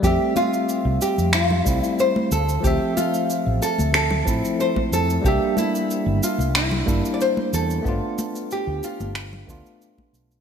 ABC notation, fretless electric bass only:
X:1
M:4/4
L:1/16
Q:1/4=92
K:F
V:1 name="Fretless electric bass" clef=bass
F,, z4 C,, z F,,3 C,, z3 D,,2 | D,, z4 A,,, z D,,3 A,,, z3 F,,2 | C,, z4 G,,, z C,,3 G,,, z3 E,,2 | G,,, z4 D,, z G,,,3 D,, z3 =B,,,2 |]